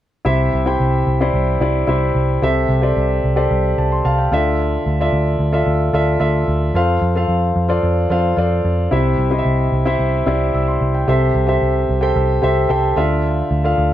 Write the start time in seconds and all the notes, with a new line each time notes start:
0.25 C2 C3 E4 G4 C5 E5
0.54 C2
0.66 E4 G4 C5 G5
0.80 C2
1.07 C2
1.21 E4 G4 C5 D5
1.34 C2
1.60 C2 E4 G4 C5 D5
1.87 C2 E4 G4 C5 E5
2.15 C2
2.42 C2 C3 G4 A4 C5 E5
2.69 C2
2.82 G4 A4 C5 D5
2.97 C2
3.24 C2
3.36 G4 A4 C5 D5
3.51 C2
3.78 C2 A5
3.92 C6
4.05 C2 F5 A5
4.18 G5
4.32 D2 D3 F4 A4 D5 E5
4.86 D2
5.00 F4 A4 D5 E5
5.13 D2
5.39 D2
5.52 F4 A4 D5 E5
5.67 D2
5.93 D2 F4 A4 D5 E5
6.20 D2 F4 A4 D5 E5
6.48 D2
6.74 F2 F4 A4 C5 F5
7.02 F2
7.15 F4 A4 C5 F5
7.28 F2
7.56 F2
7.68 F4 A4 C5 D5
7.83 F2
8.10 F2 F4 A4 C5 F5
8.36 F2 F4 A4 C5 D5
8.65 F2
8.91 C2 C3 E4 G4 C5 E5
9.18 C2
9.31 E4 G4 C5 D#5
9.38 E5
9.45 C2
9.72 C2
9.85 E4 G4 C5 E5
9.99 C2
10.26 C2 E4 G4 C5 D5
10.54 C2 E6
10.68 C6
10.81 C2
10.95 G5
11.08 C2 C3 G4 A4 C5 E5
11.35 C2
11.47 G4 A4 C5 E5
11.62 C2
11.89 C2
12.01 G4 A4 C5 G5
12.16 C2
12.42 C2 G4 A4 C5 E5
12.69 C2 G4 A4 C5 G5 A5
12.96 D2 D3 F4 A4 D5 E5 F5
13.51 D2
13.64 F4 A4 D5 F5
13.78 D2